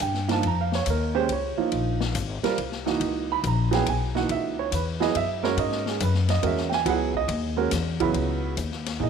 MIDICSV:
0, 0, Header, 1, 5, 480
1, 0, Start_track
1, 0, Tempo, 428571
1, 482, Time_signature, 3, 2, 24, 8
1, 10188, End_track
2, 0, Start_track
2, 0, Title_t, "Grand piano"
2, 0, Program_c, 0, 0
2, 24, Note_on_c, 0, 79, 84
2, 317, Note_on_c, 0, 53, 80
2, 320, Note_on_c, 0, 65, 86
2, 321, Note_on_c, 0, 63, 62
2, 322, Note_on_c, 0, 58, 72
2, 327, Note_off_c, 0, 79, 0
2, 351, Note_on_c, 0, 81, 86
2, 462, Note_off_c, 0, 53, 0
2, 464, Note_off_c, 0, 63, 0
2, 464, Note_off_c, 0, 65, 0
2, 465, Note_off_c, 0, 58, 0
2, 491, Note_off_c, 0, 81, 0
2, 527, Note_on_c, 0, 82, 90
2, 661, Note_off_c, 0, 82, 0
2, 681, Note_on_c, 0, 77, 81
2, 817, Note_off_c, 0, 77, 0
2, 840, Note_on_c, 0, 73, 78
2, 978, Note_off_c, 0, 73, 0
2, 1010, Note_on_c, 0, 70, 75
2, 1285, Note_on_c, 0, 56, 90
2, 1285, Note_on_c, 0, 67, 80
2, 1287, Note_on_c, 0, 61, 82
2, 1292, Note_on_c, 0, 72, 98
2, 1301, Note_off_c, 0, 70, 0
2, 1427, Note_off_c, 0, 56, 0
2, 1427, Note_off_c, 0, 67, 0
2, 1428, Note_off_c, 0, 61, 0
2, 1431, Note_off_c, 0, 72, 0
2, 1483, Note_on_c, 0, 73, 76
2, 1764, Note_on_c, 0, 53, 71
2, 1767, Note_on_c, 0, 58, 70
2, 1769, Note_on_c, 0, 65, 79
2, 1770, Note_on_c, 0, 63, 68
2, 1911, Note_off_c, 0, 73, 0
2, 2371, Note_off_c, 0, 53, 0
2, 2373, Note_off_c, 0, 58, 0
2, 2374, Note_off_c, 0, 63, 0
2, 2374, Note_off_c, 0, 65, 0
2, 2725, Note_on_c, 0, 55, 89
2, 2733, Note_on_c, 0, 60, 68
2, 2734, Note_on_c, 0, 65, 73
2, 2734, Note_on_c, 0, 70, 92
2, 2868, Note_off_c, 0, 55, 0
2, 2872, Note_off_c, 0, 60, 0
2, 2872, Note_off_c, 0, 65, 0
2, 2872, Note_off_c, 0, 70, 0
2, 3203, Note_on_c, 0, 58, 66
2, 3205, Note_on_c, 0, 52, 71
2, 3205, Note_on_c, 0, 63, 73
2, 3210, Note_on_c, 0, 66, 79
2, 3716, Note_on_c, 0, 83, 102
2, 3811, Note_off_c, 0, 58, 0
2, 3812, Note_off_c, 0, 52, 0
2, 3812, Note_off_c, 0, 63, 0
2, 3815, Note_off_c, 0, 66, 0
2, 3855, Note_off_c, 0, 83, 0
2, 3889, Note_on_c, 0, 82, 80
2, 4158, Note_on_c, 0, 54, 91
2, 4163, Note_on_c, 0, 64, 74
2, 4164, Note_on_c, 0, 59, 82
2, 4169, Note_on_c, 0, 68, 98
2, 4181, Note_off_c, 0, 82, 0
2, 4191, Note_on_c, 0, 79, 92
2, 4304, Note_off_c, 0, 54, 0
2, 4307, Note_off_c, 0, 59, 0
2, 4307, Note_off_c, 0, 64, 0
2, 4310, Note_off_c, 0, 68, 0
2, 4332, Note_off_c, 0, 79, 0
2, 4354, Note_on_c, 0, 80, 90
2, 4643, Note_on_c, 0, 52, 67
2, 4649, Note_on_c, 0, 58, 61
2, 4649, Note_on_c, 0, 63, 64
2, 4650, Note_on_c, 0, 66, 78
2, 4653, Note_off_c, 0, 80, 0
2, 4669, Note_on_c, 0, 78, 81
2, 4811, Note_off_c, 0, 78, 0
2, 4831, Note_on_c, 0, 76, 83
2, 5132, Note_off_c, 0, 76, 0
2, 5144, Note_on_c, 0, 73, 82
2, 5251, Note_off_c, 0, 52, 0
2, 5253, Note_off_c, 0, 58, 0
2, 5253, Note_off_c, 0, 63, 0
2, 5254, Note_off_c, 0, 66, 0
2, 5288, Note_off_c, 0, 73, 0
2, 5312, Note_on_c, 0, 71, 83
2, 5601, Note_on_c, 0, 59, 80
2, 5604, Note_on_c, 0, 54, 78
2, 5605, Note_on_c, 0, 64, 79
2, 5608, Note_on_c, 0, 68, 92
2, 5612, Note_off_c, 0, 71, 0
2, 5624, Note_on_c, 0, 75, 104
2, 5745, Note_off_c, 0, 59, 0
2, 5747, Note_off_c, 0, 54, 0
2, 5747, Note_off_c, 0, 64, 0
2, 5749, Note_off_c, 0, 68, 0
2, 5768, Note_off_c, 0, 75, 0
2, 5785, Note_on_c, 0, 76, 101
2, 6079, Note_on_c, 0, 56, 81
2, 6085, Note_on_c, 0, 61, 70
2, 6085, Note_on_c, 0, 66, 72
2, 6088, Note_off_c, 0, 76, 0
2, 6089, Note_on_c, 0, 70, 95
2, 6100, Note_on_c, 0, 73, 93
2, 6246, Note_off_c, 0, 73, 0
2, 6263, Note_on_c, 0, 75, 94
2, 6567, Note_off_c, 0, 75, 0
2, 6587, Note_on_c, 0, 68, 61
2, 6688, Note_off_c, 0, 56, 0
2, 6691, Note_off_c, 0, 61, 0
2, 6691, Note_off_c, 0, 66, 0
2, 6693, Note_off_c, 0, 70, 0
2, 6729, Note_off_c, 0, 68, 0
2, 6753, Note_on_c, 0, 71, 75
2, 7052, Note_off_c, 0, 71, 0
2, 7058, Note_on_c, 0, 75, 95
2, 7196, Note_on_c, 0, 56, 70
2, 7198, Note_on_c, 0, 61, 62
2, 7199, Note_on_c, 0, 66, 68
2, 7202, Note_on_c, 0, 70, 75
2, 7205, Note_off_c, 0, 75, 0
2, 7243, Note_on_c, 0, 76, 79
2, 7490, Note_off_c, 0, 56, 0
2, 7491, Note_off_c, 0, 61, 0
2, 7491, Note_off_c, 0, 66, 0
2, 7493, Note_off_c, 0, 70, 0
2, 7498, Note_on_c, 0, 79, 79
2, 7518, Note_off_c, 0, 79, 0
2, 7536, Note_off_c, 0, 76, 0
2, 7550, Note_on_c, 0, 80, 110
2, 7681, Note_on_c, 0, 54, 89
2, 7683, Note_on_c, 0, 64, 79
2, 7685, Note_on_c, 0, 68, 95
2, 7687, Note_on_c, 0, 59, 80
2, 7690, Note_off_c, 0, 80, 0
2, 7718, Note_on_c, 0, 78, 86
2, 7972, Note_off_c, 0, 54, 0
2, 7973, Note_off_c, 0, 64, 0
2, 7974, Note_off_c, 0, 68, 0
2, 7975, Note_off_c, 0, 59, 0
2, 8014, Note_off_c, 0, 78, 0
2, 8028, Note_on_c, 0, 75, 106
2, 8115, Note_off_c, 0, 75, 0
2, 8475, Note_on_c, 0, 56, 82
2, 8482, Note_on_c, 0, 61, 71
2, 8482, Note_on_c, 0, 66, 78
2, 8484, Note_on_c, 0, 70, 85
2, 8621, Note_off_c, 0, 56, 0
2, 8625, Note_off_c, 0, 61, 0
2, 8625, Note_off_c, 0, 66, 0
2, 8626, Note_off_c, 0, 70, 0
2, 8962, Note_on_c, 0, 54, 88
2, 8964, Note_on_c, 0, 49, 92
2, 8967, Note_on_c, 0, 64, 107
2, 8970, Note_on_c, 0, 59, 91
2, 9569, Note_off_c, 0, 54, 0
2, 9570, Note_off_c, 0, 49, 0
2, 9571, Note_off_c, 0, 64, 0
2, 9573, Note_off_c, 0, 59, 0
2, 10075, Note_on_c, 0, 58, 52
2, 10075, Note_on_c, 0, 63, 54
2, 10077, Note_on_c, 0, 52, 54
2, 10079, Note_on_c, 0, 68, 66
2, 10119, Note_on_c, 0, 75, 80
2, 10188, Note_off_c, 0, 52, 0
2, 10188, Note_off_c, 0, 58, 0
2, 10188, Note_off_c, 0, 63, 0
2, 10188, Note_off_c, 0, 68, 0
2, 10188, Note_off_c, 0, 75, 0
2, 10188, End_track
3, 0, Start_track
3, 0, Title_t, "Upright bass"
3, 0, Program_c, 1, 32
3, 5, Note_on_c, 1, 43, 84
3, 470, Note_off_c, 1, 43, 0
3, 483, Note_on_c, 1, 41, 83
3, 949, Note_off_c, 1, 41, 0
3, 968, Note_on_c, 1, 39, 94
3, 1432, Note_off_c, 1, 39, 0
3, 1442, Note_on_c, 1, 37, 87
3, 1743, Note_off_c, 1, 37, 0
3, 1928, Note_on_c, 1, 34, 80
3, 2392, Note_off_c, 1, 34, 0
3, 2409, Note_on_c, 1, 32, 100
3, 2707, Note_off_c, 1, 32, 0
3, 2888, Note_on_c, 1, 36, 77
3, 3352, Note_off_c, 1, 36, 0
3, 3359, Note_on_c, 1, 37, 86
3, 3827, Note_off_c, 1, 37, 0
3, 3847, Note_on_c, 1, 34, 94
3, 4311, Note_off_c, 1, 34, 0
3, 4327, Note_on_c, 1, 35, 80
3, 4792, Note_off_c, 1, 35, 0
3, 4807, Note_on_c, 1, 37, 93
3, 5271, Note_off_c, 1, 37, 0
3, 5284, Note_on_c, 1, 40, 90
3, 5749, Note_off_c, 1, 40, 0
3, 5767, Note_on_c, 1, 42, 79
3, 6231, Note_off_c, 1, 42, 0
3, 6238, Note_on_c, 1, 44, 98
3, 6706, Note_off_c, 1, 44, 0
3, 6725, Note_on_c, 1, 42, 110
3, 7189, Note_off_c, 1, 42, 0
3, 7198, Note_on_c, 1, 40, 94
3, 7666, Note_off_c, 1, 40, 0
3, 7677, Note_on_c, 1, 37, 92
3, 8145, Note_off_c, 1, 37, 0
3, 8153, Note_on_c, 1, 39, 104
3, 8623, Note_off_c, 1, 39, 0
3, 8644, Note_on_c, 1, 40, 97
3, 9108, Note_off_c, 1, 40, 0
3, 9117, Note_on_c, 1, 37, 88
3, 9585, Note_off_c, 1, 37, 0
3, 9598, Note_on_c, 1, 39, 89
3, 10065, Note_off_c, 1, 39, 0
3, 10077, Note_on_c, 1, 46, 83
3, 10188, Note_off_c, 1, 46, 0
3, 10188, End_track
4, 0, Start_track
4, 0, Title_t, "Muted upright bass strokes"
4, 1767, Note_on_c, 9, 29, 42
4, 1879, Note_off_c, 9, 29, 0
4, 2730, Note_on_c, 9, 29, 37
4, 2842, Note_off_c, 9, 29, 0
4, 10188, End_track
5, 0, Start_track
5, 0, Title_t, "Drums"
5, 0, Note_on_c, 9, 44, 68
5, 0, Note_on_c, 9, 51, 84
5, 110, Note_off_c, 9, 44, 0
5, 110, Note_off_c, 9, 51, 0
5, 161, Note_on_c, 9, 38, 30
5, 273, Note_off_c, 9, 38, 0
5, 322, Note_on_c, 9, 38, 46
5, 325, Note_on_c, 9, 51, 49
5, 434, Note_off_c, 9, 38, 0
5, 437, Note_off_c, 9, 51, 0
5, 482, Note_on_c, 9, 51, 63
5, 594, Note_off_c, 9, 51, 0
5, 809, Note_on_c, 9, 38, 57
5, 921, Note_off_c, 9, 38, 0
5, 961, Note_on_c, 9, 44, 63
5, 961, Note_on_c, 9, 51, 76
5, 1073, Note_off_c, 9, 44, 0
5, 1073, Note_off_c, 9, 51, 0
5, 1444, Note_on_c, 9, 51, 67
5, 1556, Note_off_c, 9, 51, 0
5, 1923, Note_on_c, 9, 51, 62
5, 2035, Note_off_c, 9, 51, 0
5, 2246, Note_on_c, 9, 38, 70
5, 2358, Note_off_c, 9, 38, 0
5, 2405, Note_on_c, 9, 44, 62
5, 2405, Note_on_c, 9, 51, 84
5, 2517, Note_off_c, 9, 44, 0
5, 2517, Note_off_c, 9, 51, 0
5, 2731, Note_on_c, 9, 51, 50
5, 2732, Note_on_c, 9, 38, 55
5, 2843, Note_off_c, 9, 51, 0
5, 2844, Note_off_c, 9, 38, 0
5, 2887, Note_on_c, 9, 51, 67
5, 2999, Note_off_c, 9, 51, 0
5, 3047, Note_on_c, 9, 38, 30
5, 3159, Note_off_c, 9, 38, 0
5, 3206, Note_on_c, 9, 38, 45
5, 3318, Note_off_c, 9, 38, 0
5, 3367, Note_on_c, 9, 51, 66
5, 3479, Note_off_c, 9, 51, 0
5, 3849, Note_on_c, 9, 44, 54
5, 3849, Note_on_c, 9, 51, 77
5, 3961, Note_off_c, 9, 44, 0
5, 3961, Note_off_c, 9, 51, 0
5, 4174, Note_on_c, 9, 51, 49
5, 4175, Note_on_c, 9, 38, 48
5, 4286, Note_off_c, 9, 51, 0
5, 4287, Note_off_c, 9, 38, 0
5, 4328, Note_on_c, 9, 51, 79
5, 4440, Note_off_c, 9, 51, 0
5, 4655, Note_on_c, 9, 38, 34
5, 4767, Note_off_c, 9, 38, 0
5, 4807, Note_on_c, 9, 51, 61
5, 4919, Note_off_c, 9, 51, 0
5, 5287, Note_on_c, 9, 44, 60
5, 5287, Note_on_c, 9, 51, 81
5, 5399, Note_off_c, 9, 44, 0
5, 5399, Note_off_c, 9, 51, 0
5, 5612, Note_on_c, 9, 38, 60
5, 5724, Note_off_c, 9, 38, 0
5, 5767, Note_on_c, 9, 51, 69
5, 5879, Note_off_c, 9, 51, 0
5, 6089, Note_on_c, 9, 38, 42
5, 6201, Note_off_c, 9, 38, 0
5, 6244, Note_on_c, 9, 51, 66
5, 6356, Note_off_c, 9, 51, 0
5, 6402, Note_on_c, 9, 38, 30
5, 6514, Note_off_c, 9, 38, 0
5, 6565, Note_on_c, 9, 38, 50
5, 6677, Note_off_c, 9, 38, 0
5, 6724, Note_on_c, 9, 44, 64
5, 6724, Note_on_c, 9, 51, 86
5, 6836, Note_off_c, 9, 44, 0
5, 6836, Note_off_c, 9, 51, 0
5, 6882, Note_on_c, 9, 38, 30
5, 6994, Note_off_c, 9, 38, 0
5, 7040, Note_on_c, 9, 51, 54
5, 7041, Note_on_c, 9, 38, 50
5, 7152, Note_off_c, 9, 51, 0
5, 7153, Note_off_c, 9, 38, 0
5, 7200, Note_on_c, 9, 51, 68
5, 7312, Note_off_c, 9, 51, 0
5, 7359, Note_on_c, 9, 38, 31
5, 7471, Note_off_c, 9, 38, 0
5, 7521, Note_on_c, 9, 38, 47
5, 7633, Note_off_c, 9, 38, 0
5, 7681, Note_on_c, 9, 51, 74
5, 7793, Note_off_c, 9, 51, 0
5, 8004, Note_on_c, 9, 36, 58
5, 8116, Note_off_c, 9, 36, 0
5, 8159, Note_on_c, 9, 51, 77
5, 8271, Note_off_c, 9, 51, 0
5, 8636, Note_on_c, 9, 44, 78
5, 8636, Note_on_c, 9, 51, 87
5, 8637, Note_on_c, 9, 38, 50
5, 8748, Note_off_c, 9, 44, 0
5, 8748, Note_off_c, 9, 51, 0
5, 8749, Note_off_c, 9, 38, 0
5, 8961, Note_on_c, 9, 51, 52
5, 8963, Note_on_c, 9, 36, 70
5, 9073, Note_off_c, 9, 51, 0
5, 9075, Note_off_c, 9, 36, 0
5, 9119, Note_on_c, 9, 51, 59
5, 9231, Note_off_c, 9, 51, 0
5, 9598, Note_on_c, 9, 44, 63
5, 9598, Note_on_c, 9, 51, 72
5, 9710, Note_off_c, 9, 44, 0
5, 9710, Note_off_c, 9, 51, 0
5, 9763, Note_on_c, 9, 38, 26
5, 9875, Note_off_c, 9, 38, 0
5, 9927, Note_on_c, 9, 38, 41
5, 9927, Note_on_c, 9, 51, 68
5, 10039, Note_off_c, 9, 38, 0
5, 10039, Note_off_c, 9, 51, 0
5, 10188, End_track
0, 0, End_of_file